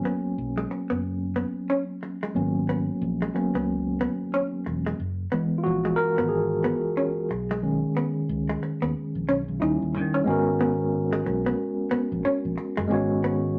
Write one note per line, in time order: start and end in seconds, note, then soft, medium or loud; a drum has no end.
0.00 2.31 F#3 soft
0.00 2.31 A#3 soft
0.00 2.31 B3 soft
0.00 2.31 C#4 medium
0.05 0.18 B3 medium
0.38 0.64 B1 medium
0.58 0.66 G#3 medium
0.71 muted hollow-body jazz guitar stroke soft
0.90 1.42 F#1 medium
0.90 0.99 B3 medium
1.36 1.49 B3 medium
1.70 1.83 C#4 medium
2.03 muted hollow-body jazz guitar stroke soft
2.23 2.31 G#3 medium
2.35 2.87 G#1 medium
2.35 3.33 F#3 soft
2.35 3.33 A#3 soft
2.35 3.33 B3 soft
2.35 3.34 C#4 medium
2.69 2.82 B3 medium
3.01 3.27 A#1 medium
3.22 3.30 G#3 medium
3.34 3.63 F#3 soft
3.34 3.63 A#3 soft
3.34 3.64 B3 soft
3.34 3.64 C#4 soft
3.34 muted hollow-body jazz guitar stroke soft
3.54 4.06 C#2 medium
3.54 3.63 B3 medium
4.01 4.14 B3 medium
4.34 4.47 C#4 medium
4.66 4.92 E1 medium
4.66 muted hollow-body jazz guitar stroke soft
4.86 4.95 G#3 medium
5.00 5.25 F#1 medium
5.32 5.78 E3 medium
5.32 5.78 G#3 soft
5.32 5.45 B3 medium
5.32 5.78 B3 medium
5.58 5.64 F4 medium
5.64 5.91 A#1 medium
5.64 5.98 F#4 medium
5.85 5.94 G#3 medium
5.96 6.11 A#4 loud
5.96 muted hollow-body jazz guitar stroke soft
6.18 6.70 G#1 medium
6.18 6.27 B3 medium
6.29 9.55 G#4 medium
6.64 6.77 B3 medium
6.97 7.10 C#4 medium
7.30 7.82 B1 medium
7.30 muted hollow-body jazz guitar stroke soft
7.51 7.59 G#3 medium
7.62 8.08 D#3 soft
7.62 8.08 G#3 soft
7.62 8.09 C#4 medium
7.97 8.09 B3 medium
8.29 8.55 C#2 medium
8.49 8.58 G#3 medium
8.63 muted hollow-body jazz guitar stroke soft
8.82 8.92 D#2 medium
8.82 8.91 B3 medium
9.15 9.25 A#1 medium
9.29 9.43 B1 medium
9.29 9.41 C#4 medium
9.48 9.58 B1 medium
9.60 9.77 D#2 medium
9.60 10.23 G3 soft
9.60 10.23 C#4 soft
9.60 9.75 D#4 medium
9.60 10.22 E4 soft
9.82 9.96 D#2 medium
9.95 10.20 D#3 medium
9.95 muted hollow-body jazz guitar stroke soft
10.14 10.23 C#4 medium
10.24 11.21 G#1 loud
10.24 12.85 G#3 medium
10.24 12.85 B3 medium
10.24 12.86 C#4 medium
10.29 12.87 F#4 medium
10.29 12.88 A#4 medium
10.61 10.73 B3 medium
11.13 11.21 G#3 medium
11.26 11.52 B1 medium
11.26 muted hollow-body jazz guitar stroke soft
11.46 11.55 B3 medium
11.91 12.04 B3 medium
11.91 muted fingered electric bass stroke soft
12.12 12.22 A#1 medium
12.25 12.38 C#4 medium
12.25 muted fingered electric bass stroke medium
12.45 12.55 A#1 medium
12.58 muted hollow-body jazz guitar stroke soft
12.77 12.88 F#1 medium
12.77 12.86 G#3 medium
12.88 13.59 G#1 loud
12.88 13.59 G#3 medium
12.88 13.59 B3 medium
12.88 13.59 C#4 medium
12.92 13.59 F#4 medium
12.92 13.59 C#5 medium
13.24 13.37 B3 medium